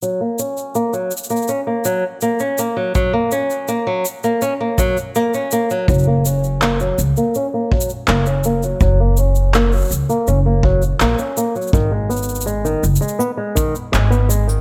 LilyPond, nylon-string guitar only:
\new Staff \with { instrumentName = "Nylon-string guitar" } { \time 4/4 \key fis \major \tempo 4 = 82 fis16 ais16 cis'8 ais16 fis16 r16 ais16 cis'16 ais16 fis16 r16 ais16 cis'16 ais16 fis16 | fis16 ais16 cis'8 ais16 fis16 r16 ais16 cis'16 ais16 fis16 r16 ais16 cis'16 ais16 fis16 | fis16 ais16 cis'8 ais16 fis16 r16 ais16 cis'16 ais16 fis16 r16 ais16 cis'16 ais16 fis16 | fis16 ais16 cis'8 ais16 fis16 r16 ais16 cis'16 ais16 fis16 r16 ais16 cis'16 ais16 fis16 |
dis16 gis16 b8 gis16 dis16 r16 gis16 b16 gis16 dis16 r16 gis16 b16 gis16 dis16 | }